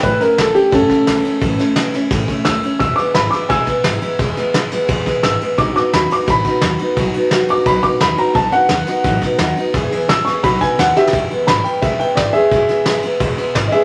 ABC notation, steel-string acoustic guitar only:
X:1
M:4/4
L:1/8
Q:1/4=173
K:E
V:1 name="Steel-string acoustic guitar"
[A,,E,A,CE] [A,CE] [E,A,CE] [A,CE] [A,,E,A,CE] [A,CE] [E,A,CE] [A,CE] | [A,,E,A,CE] [A,CE] [E,A,CE] [A,CE] [A,,E,A,CE] [A,CE] [E,A,CE] [A,CE] | [E,,B,,E,G,B,E] [E,G,B,E] [E,G,B,E] [E,G,B,E] [E,,B,,E,G,B,E] [E,G,B,E] [E,G,B,E] [E,G,B,E] | [E,,B,,E,G,B,E] [E,G,B,E] [E,G,B,E] [E,G,B,E] [E,,B,,E,G,B,E] [E,G,B,E] [E,G,B,E] [E,G,B,E] |
[B,,F,B,DF] [B,DF] [F,B,DF] [B,DF] [B,,F,B,DF] [B,DF] [F,B,DF] [B,DF] | [B,,F,B,DF] [B,DF] [F,B,DF] [B,DF] [B,,F,B,DF] [B,DF] [F,B,DF] [B,DF] | [B,,F,B,DF] [B,DF] [F,B,DF] [B,DF] [B,,F,B,DF] [B,DF] [F,B,DF] [B,DF] | [E,,B,,E,B,EG] [E,B,EG] [E,B,EG] [E,B,EG] [B,,F,B,DF] [B,DF] [F,B,DF] [B,DF] |
[E,,B,,E,G,B,E] [E,G,B,E] [E,G,B,E] [E,G,B,E] [E,,B,,E,G,B,E] [E,G,B,E] [E,G,B,E] [E,G,B,E] | [E,,B,,E,G,B,E] [E,G,B,E] [E,G,B,E] [E,G,B,E] [E,,B,,E,G,B,E] [E,G,B,E] [E,G,B,E] [E,G,B,E] |]